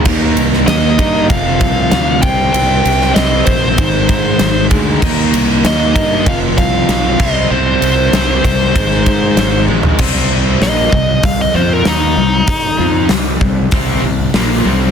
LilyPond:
<<
  \new Staff \with { instrumentName = "Lead electric guitar" } { \time 4/4 \key c \minor \tempo 4 = 97 r4 ees''4 f''4. g''8 | g''4 ees''8 c''2 r8 | r4 ees''4 f''8 f''4 ees''8 | c''4. c''2 r8 |
r4 ees''4 f''16 ees''16 c''16 bes'16 ees'4~ | ees'4 r2. | }
  \new Staff \with { instrumentName = "Overdriven electric guitar" } { \clef bass \time 4/4 \key c \minor <ees bes ees'>4. <ees bes ees'>8 <f, c f>4. <c g c'>8~ | <c g c'>4 <c g c'>4 <aes, ees aes>4. <aes, ees aes>8 | <ees bes ees'>4. <ees bes ees'>8 <f, c f>4. <c g c'>8~ | <c g c'>4 <c g c'>4 <aes, ees aes>4. <aes, ees aes>8 |
<c g c'>4 <bes, f bes>8 <c g>8 <c g>8 <f c' f'>8 <ees bes ees'>8 <c g>8 | r8 <f c' f'>8 <c g>8 <c g>8 <c g c'>8 <c g>8 <bes, f bes>8 <c g c'>8 | }
  \new Staff \with { instrumentName = "Fingered electric bass" } { \clef bass \time 4/4 \key c \minor ees,8 c,8 ees,8 g,8 f,,8 c,8 d,8 c,8 | c,8 c,8 c,8 bes,,8 aes,,8 aes,8 aes,,8 d,8 | ees,8 c,8 ees,8 g,8 f,,8 c,8 b,,8 c,8 | c,8 c,8 c,8 c,8 aes,,8 aes,8 aes,,8 bes,,8 |
c,4 bes,,8 c,8 c,8 f,8 ees,8 c,8 | r8 f,8 c,8 c,8 c,8 c,8 bes,,8 c,8 | }
  \new DrumStaff \with { instrumentName = "Drums" } \drummode { \time 4/4 <cymc bd cymr>8 cymr16 sn16 <cymr sn>8 <bd cymr>8 <bd cymr>8 <bd cymr>8 <cymr sn>8 <bd cymr>8 | cymr8 cymr16 sn16 <cymr sn>8 <bd cymr>8 <bd cymr>8 <bd cymr>8 <cymr sn>8 <bd cymr>8 | <cymc bd>8 cymr8 <cymr sn>8 <bd cymr>8 <bd cymr>8 <bd cymr>8 <cymr sn>8 <cymc bd>8 | r8 cymr8 <cymr sn>8 <bd cymr>8 <bd cymr>8 <bd cymr>8 <cymr sn>8 tommh16 tomfh16 |
<cymc bd>16 sn8. <hho sn>8 bd8 <hho bd>4 <hho sn>4 | <hho bd>4 <hho sn>8 bd8 <hho bd>4 <hho sn>4 | }
>>